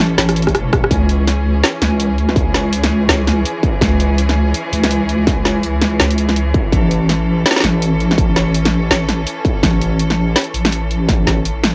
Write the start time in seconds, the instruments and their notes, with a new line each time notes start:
Already playing: wobble bass A1, string section E3 C#4 A4
0.18 wobble bass A1, cross-stick, snare
0.29 cross-stick, closed hi-hat
0.36 closed hi-hat
0.42 closed hi-hat
0.47 kick, cross-stick, closed hi-hat
0.55 wobble bass E1, cross-stick, closed hi-hat
0.73 kick, cross-stick, closed hi-hat
0.84 cross-stick
0.91 wobble bass C#2, string section E3 G#4, kick, closed hi-hat
1.09 closed hi-hat
1.27 snare, closed hi-hat
1.63 snare, closed hi-hat
1.82 wobble bass C#2, snare, closed hi-hat
2.00 closed hi-hat
2.18 closed hi-hat
2.29 snare
2.36 wobble bass C#2, kick, closed hi-hat
2.54 snare, closed hi-hat
2.73 closed hi-hat
2.84 snare
3.09 wobble bass C#2, snare, closed hi-hat
3.27 snare, closed hi-hat
3.46 closed hi-hat
3.63 kick, closed hi-hat
3.81 wobble bass C#2, kick, snare, closed hi-hat
4.00 closed hi-hat
4.18 closed hi-hat
4.29 snare
4.54 closed hi-hat
4.73 wobble bass C#2, closed hi-hat
4.84 snare
4.91 closed hi-hat
5.09 closed hi-hat
5.27 wobble bass C#2, kick, snare, closed hi-hat
5.45 snare, closed hi-hat
5.63 closed hi-hat
5.81 snare
6.00 wobble bass C#2, snare
6.10 closed hi-hat
6.18 closed hi-hat
6.29 snare
6.36 closed hi-hat
6.54 kick, closed hi-hat
6.73 wobble bass A1, string section C#4 A4, kick, closed hi-hat
6.91 closed hi-hat
7.09 snare, closed hi-hat
7.46 snare, closed hi-hat
7.51 snare
7.56 snare
7.60 wobble bass A1, snare
7.64 snare, closed hi-hat
7.82 closed hi-hat
8.00 closed hi-hat
8.11 snare
8.18 wobble bass A1, kick, closed hi-hat
8.36 snare, closed hi-hat
8.55 closed hi-hat
8.65 snare
8.91 wobble bass A1, snare, closed hi-hat
9.09 snare, closed hi-hat
9.27 closed hi-hat
9.45 kick, closed hi-hat
9.63 wobble bass A1, kick, snare, closed hi-hat
9.81 closed hi-hat
9.99 closed hi-hat
10.10 snare
10.36 snare, closed hi-hat
10.38 closed hi-hat
10.41 closed hi-hat
10.44 closed hi-hat
10.54 wobble bass A1, closed hi-hat
10.65 snare
10.72 closed hi-hat
10.91 closed hi-hat
11.09 wobble bass A1, kick, snare, closed hi-hat
11.27 kick, snare, closed hi-hat
11.45 closed hi-hat
11.63 snare